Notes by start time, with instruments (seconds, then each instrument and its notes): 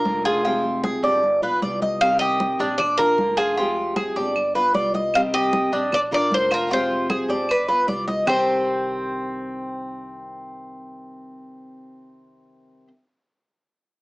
Already playing: cuban tres A#4
0.05 upright bass F1, nylon-string guitar D3 A#3 D4 F4, high conga
0.25 cuban tres F4 G#4, high conga
0.44 nylon-string guitar C3 F3 G#3 C4 G4, cuban tres F4, high conga
0.64 high conga
0.84 cuban tres G#4, high conga
1.03 upright bass G1, nylon-string guitar F3 G#3 C4 G4, cuban tres D5, high conga
1.23 muted nylon-string guitar stroke, high conga
1.42 upright bass B1, nylon-string guitar B3 F4, cuban tres B4, high conga
1.62 upright bass C2, nylon-string guitar G3 B3 F4, cuban tres D5, high conga
1.82 cuban tres D#5, high conga
2.00 nylon-string guitar C3 D#3 G3 C4 G4, cuban tres F5, high conga, claves
2.19 cuban tres G4 D#5, high conga
2.40 high conga
2.59 upright bass A#1, nylon-string guitar D#3 G3 C4 G4, cuban tres D4, high conga
2.78 cuban tres D5, muted nylon-string guitar stroke, high conga, low conga, claves
2.98 nylon-string guitar A#3 D4 F4, cuban tres A#4, high conga, low conga
3.18 upright bass F1, nylon-string guitar D3 A#3 D4 F4, high conga
3.37 cuban tres F4 G#4, high conga, claves
3.57 nylon-string guitar C3 F3 G#3 C4 G4, cuban tres F4, high conga
3.76 high conga
3.96 cuban tres G#4, high conga, claves
4.16 upright bass G1, nylon-string guitar F3 G#3 C4 G4, cuban tres D5, high conga
4.36 muted nylon-string guitar stroke, high conga, claves
4.55 nylon-string guitar B3 F4, cuban tres B4, high conga
4.74 upright bass C2, nylon-string guitar G3 B3 F4, cuban tres D5, high conga
4.94 cuban tres D#5, high conga
5.13 nylon-string guitar C3 D#3 G3 C4 G4, cuban tres F5, high conga, claves
5.33 cuban tres G4 D#5, high conga
5.53 high conga
5.72 upright bass A#1, nylon-string guitar D#3 G3 C4 G4, cuban tres D4, high conga
5.92 cuban tres D5, muted nylon-string guitar stroke, high conga, low conga, claves
6.11 nylon-string guitar A#3 D4 F4, cuban tres A#4 D5, high conga, low conga
6.31 upright bass F1, nylon-string guitar D3 A#3 D4 F4, cuban tres C5, high conga
6.51 cuban tres F4 A#4, high conga, claves
6.70 nylon-string guitar C3 F3 G#3 C4 G4, cuban tres F4 C5, high conga
6.90 high conga
7.10 cuban tres G#4, high conga, claves
7.28 upright bass G1, nylon-string guitar F3 G#3 C4 G4, cuban tres D5, high conga
7.49 cuban tres B4, muted nylon-string guitar stroke, high conga, claves
7.68 nylon-string guitar B3 F4, cuban tres B4, high conga
7.87 upright bass C2, nylon-string guitar G3 B3 F4, cuban tres D5, high conga
8.08 cuban tres D#5, high conga
8.25 upright bass C2, nylon-string guitar C3 D#3 G3 C4 G4, cuban tres C4 G4 C5, low conga, claves